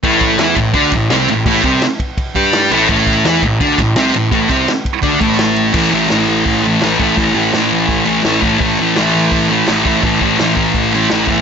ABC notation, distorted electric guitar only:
X:1
M:4/4
L:1/8
Q:1/4=168
K:Am
V:1 name="Distorted electric guitar" clef=bass
[A,,A,]2 [E,E] A,, [D,D] A,, [C,C] A,, | [A,,A,] [C,C] z3 [G,G]2 [A,,A,] | [A,,A,]2 [E,E] A,, [D,D] A,, [C,C] A,, | [A,,A,] [C,C] z2 [D,D] [A,,A,]3 |
[A,,E,A,] [E,A,] [A,,E,A,]3 [E,A,] [A,,E,A,] [E,A,] | [A,,E,A,] [E,A,] [A,,E,A,]3 [E,A,] [A,,E,A,] [E,A,] | [A,,E,A,] [E,A,] [A,,E,A,]3 [E,A,] [A,,E,A,] [E,A,] | [A,,E,A,] [E,A,] [A,,E,A,]3 [E,A,] [A,,E,A,] [E,A,] |]